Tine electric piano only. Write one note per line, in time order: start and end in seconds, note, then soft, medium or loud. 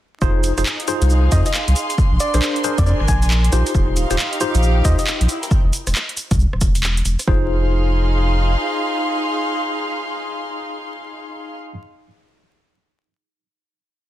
0.22 0.52 D#4 loud
0.22 0.52 F4 medium
0.22 0.52 G#4 medium
0.22 0.52 C5 loud
0.58 0.62 D#4 medium
0.58 0.62 F4 medium
0.58 0.62 G#4 medium
0.58 0.62 C5 medium
0.88 1.30 D#4 loud
0.88 1.30 F4 medium
0.88 1.30 G#4 medium
0.88 1.30 C5 loud
1.32 1.45 D#4 medium
1.32 1.45 F4 medium
1.32 1.45 G#4 medium
1.32 1.45 C5 medium
2.34 2.62 D4 medium
2.34 2.62 G#4 medium
2.34 2.62 A#4 medium
2.34 2.62 C5 medium
2.64 2.77 D4 medium
2.64 2.77 G#4 medium
2.64 2.77 A#4 medium
2.64 2.77 C5 medium
2.86 2.99 D4 medium
2.86 2.99 G#4 medium
2.86 2.99 A#4 medium
2.86 2.99 C5 medium
3.52 4.07 D#4 medium
3.52 4.07 F4 medium
3.52 4.07 G4 medium
3.52 4.07 C5 medium
4.11 4.15 D#4 medium
4.11 4.15 F4 medium
4.11 4.15 G4 medium
4.11 4.15 C5 medium
4.41 4.83 D#4 loud
4.41 4.83 F4 medium
4.41 4.83 G4 medium
4.41 4.83 C5 loud
4.85 4.97 D#4 medium
4.85 4.98 F4 medium
4.85 4.97 G4 medium
4.85 4.98 C5 medium
7.27 11.72 D#4 medium
7.27 11.72 F4 medium
7.27 11.72 G#4 medium
7.27 11.72 C5 loud